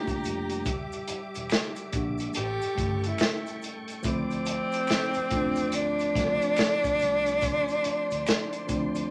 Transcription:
Already playing: G3 A3 A#3 D4 E4 F4 G4 G5 A#5
0.08 kick, closed hi-hat, maracas
0.23 F1, closed hi-hat, maracas
0.49 closed hi-hat, maracas
0.65 E1 E5 D6, kick, closed hi-hat, maracas
0.92 closed hi-hat, maracas
1.08 muted fingered electric bass stroke, closed hi-hat, maracas
1.35 E1, closed hi-hat, maracas
1.50 finger snap, snare, closed hi-hat, maracas
1.76 closed hi-hat, maracas
1.92 A#1 G3 A#3 D4, kick, closed hi-hat
1.96 F#4
2.18 closed hi-hat, maracas
2.33 A1 G4 A4 G5 C#6, closed hi-hat, maracas
2.62 closed hi-hat, maracas
2.75 G1 G3 A3 C#4, kick, closed hi-hat
2.80 E4
3.03 E4, closed hi-hat, maracas
3.18 finger snap, snare, closed hi-hat, maracas
3.46 closed hi-hat, maracas
3.62 closed hi-hat, maracas
3.88 closed hi-hat, maracas
4.02 D2 F3 A3 C4 C5 D5 D6, kick, closed hi-hat, maracas
4.07 C4 E4
4.30 closed hi-hat, maracas
4.46 closed hi-hat, maracas
4.72 closed hi-hat, maracas
4.87 finger snap, snare, closed hi-hat, maracas
5.14 muted fingered electric bass stroke, closed hi-hat, maracas
5.30 E2 A3 C4 F4, kick, closed hi-hat
5.34 D4
5.56 closed hi-hat, maracas
5.72 D2 D4, closed hi-hat, maracas
5.99 closed hi-hat, maracas
6.14 C2 F3 A3 C4 F4, kick, snare, closed hi-hat
6.42 closed hi-hat, maracas
6.56 finger snap, snare, closed hi-hat, maracas
6.84 kick, closed hi-hat, maracas
6.99 C2, closed hi-hat, maracas
7.26 closed hi-hat, maracas
7.41 C6, kick, closed hi-hat, maracas
7.68 closed hi-hat, maracas
7.84 muted fingered electric bass stroke, closed hi-hat, maracas
8.11 D2, closed hi-hat, maracas
8.27 finger snap, snare, closed hi-hat, maracas
8.53 closed hi-hat, maracas
8.67 D2 F3 A3 C4 D4, kick, closed hi-hat, maracas
8.77 E4
8.95 closed hi-hat, maracas

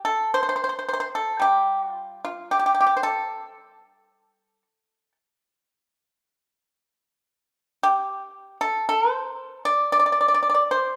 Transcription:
0.05 A4
0.34 C5
0.43 C5
0.49 C5
0.56 C5
0.64 C5
0.69 C5
0.79 C5
0.89 C5
0.93 C5
1.00 C5
1.15 A4
1.40 G3 G4
1.92 F4
2.25 F4
2.51 G4
2.59 G4
2.66 G4
2.75 G4
2.81 G4
2.87 G4
2.97 C5
3.03 A4
7.83 G4
8.61 A4
8.89 A4
9.12 C5
9.65 D5
9.92 D5
9.99 D5
10.06 D5
10.12 D5
10.21 D5
10.28 D5
10.34 D5
10.43 D5
10.50 D5
10.55 D5
10.71 C5

